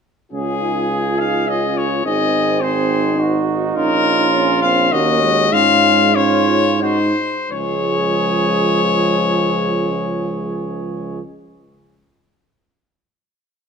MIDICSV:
0, 0, Header, 1, 6, 480
1, 0, Start_track
1, 0, Key_signature, -5, "major"
1, 0, Tempo, 573614
1, 270, Time_signature, 3, 2, 24, 8
1, 3627, Tempo, 603622
1, 5067, Tempo, 687285
1, 10329, End_track
2, 0, Start_track
2, 0, Title_t, "Trumpet"
2, 0, Program_c, 0, 56
2, 275, Note_on_c, 0, 68, 80
2, 1002, Note_on_c, 0, 77, 78
2, 1014, Note_off_c, 0, 68, 0
2, 1244, Note_on_c, 0, 75, 78
2, 1257, Note_off_c, 0, 77, 0
2, 1486, Note_on_c, 0, 73, 70
2, 1499, Note_off_c, 0, 75, 0
2, 1718, Note_off_c, 0, 73, 0
2, 1723, Note_on_c, 0, 75, 90
2, 2195, Note_on_c, 0, 72, 80
2, 2207, Note_off_c, 0, 75, 0
2, 2907, Note_off_c, 0, 72, 0
2, 3142, Note_on_c, 0, 70, 101
2, 3824, Note_off_c, 0, 70, 0
2, 3857, Note_on_c, 0, 77, 97
2, 4096, Note_on_c, 0, 75, 108
2, 4108, Note_off_c, 0, 77, 0
2, 4577, Note_on_c, 0, 77, 116
2, 4589, Note_off_c, 0, 75, 0
2, 5073, Note_on_c, 0, 73, 96
2, 5084, Note_off_c, 0, 77, 0
2, 5536, Note_off_c, 0, 73, 0
2, 5540, Note_on_c, 0, 72, 92
2, 6017, Note_off_c, 0, 72, 0
2, 6025, Note_on_c, 0, 73, 88
2, 8601, Note_off_c, 0, 73, 0
2, 10329, End_track
3, 0, Start_track
3, 0, Title_t, "Flugelhorn"
3, 0, Program_c, 1, 56
3, 281, Note_on_c, 1, 68, 60
3, 1691, Note_off_c, 1, 68, 0
3, 1723, Note_on_c, 1, 68, 61
3, 2186, Note_off_c, 1, 68, 0
3, 2195, Note_on_c, 1, 68, 61
3, 2676, Note_on_c, 1, 66, 60
3, 2689, Note_off_c, 1, 68, 0
3, 3148, Note_on_c, 1, 65, 74
3, 3161, Note_off_c, 1, 66, 0
3, 4094, Note_on_c, 1, 66, 69
3, 4106, Note_off_c, 1, 65, 0
3, 4574, Note_off_c, 1, 66, 0
3, 4580, Note_on_c, 1, 65, 74
3, 5062, Note_off_c, 1, 65, 0
3, 5073, Note_on_c, 1, 65, 77
3, 5526, Note_off_c, 1, 65, 0
3, 5539, Note_on_c, 1, 66, 58
3, 5648, Note_off_c, 1, 66, 0
3, 6025, Note_on_c, 1, 68, 69
3, 8601, Note_off_c, 1, 68, 0
3, 10329, End_track
4, 0, Start_track
4, 0, Title_t, "French horn"
4, 0, Program_c, 2, 60
4, 265, Note_on_c, 2, 65, 55
4, 1683, Note_off_c, 2, 65, 0
4, 1718, Note_on_c, 2, 63, 60
4, 2183, Note_off_c, 2, 63, 0
4, 2198, Note_on_c, 2, 63, 68
4, 3146, Note_on_c, 2, 61, 66
4, 3158, Note_off_c, 2, 63, 0
4, 4083, Note_off_c, 2, 61, 0
4, 4088, Note_on_c, 2, 61, 68
4, 4561, Note_off_c, 2, 61, 0
4, 4573, Note_on_c, 2, 61, 72
4, 5058, Note_off_c, 2, 61, 0
4, 5072, Note_on_c, 2, 61, 74
4, 5539, Note_on_c, 2, 63, 61
4, 5549, Note_off_c, 2, 61, 0
4, 5781, Note_off_c, 2, 63, 0
4, 6021, Note_on_c, 2, 56, 65
4, 8597, Note_off_c, 2, 56, 0
4, 10329, End_track
5, 0, Start_track
5, 0, Title_t, "Trombone"
5, 0, Program_c, 3, 57
5, 270, Note_on_c, 3, 61, 58
5, 513, Note_on_c, 3, 63, 57
5, 525, Note_off_c, 3, 61, 0
5, 762, Note_on_c, 3, 65, 62
5, 774, Note_off_c, 3, 63, 0
5, 998, Note_off_c, 3, 65, 0
5, 1003, Note_on_c, 3, 63, 61
5, 1240, Note_on_c, 3, 61, 65
5, 1252, Note_off_c, 3, 63, 0
5, 1711, Note_off_c, 3, 61, 0
5, 1716, Note_on_c, 3, 60, 73
5, 2669, Note_on_c, 3, 63, 89
5, 2681, Note_off_c, 3, 60, 0
5, 3631, Note_on_c, 3, 61, 76
5, 3643, Note_off_c, 3, 63, 0
5, 3856, Note_off_c, 3, 61, 0
5, 3861, Note_on_c, 3, 60, 75
5, 4089, Note_off_c, 3, 60, 0
5, 4094, Note_on_c, 3, 58, 77
5, 4327, Note_off_c, 3, 58, 0
5, 4336, Note_on_c, 3, 56, 73
5, 5056, Note_off_c, 3, 56, 0
5, 5076, Note_on_c, 3, 65, 79
5, 5295, Note_off_c, 3, 65, 0
5, 5299, Note_on_c, 3, 65, 74
5, 5537, Note_on_c, 3, 63, 64
5, 5548, Note_off_c, 3, 65, 0
5, 5781, Note_off_c, 3, 63, 0
5, 6025, Note_on_c, 3, 53, 70
5, 8602, Note_off_c, 3, 53, 0
5, 10329, End_track
6, 0, Start_track
6, 0, Title_t, "Tuba"
6, 0, Program_c, 4, 58
6, 274, Note_on_c, 4, 37, 60
6, 1687, Note_off_c, 4, 37, 0
6, 1719, Note_on_c, 4, 32, 65
6, 3118, Note_off_c, 4, 32, 0
6, 3147, Note_on_c, 4, 34, 70
6, 4095, Note_on_c, 4, 39, 76
6, 4107, Note_off_c, 4, 34, 0
6, 4567, Note_off_c, 4, 39, 0
6, 4572, Note_on_c, 4, 44, 81
6, 5755, Note_off_c, 4, 44, 0
6, 6024, Note_on_c, 4, 37, 65
6, 8600, Note_off_c, 4, 37, 0
6, 10329, End_track
0, 0, End_of_file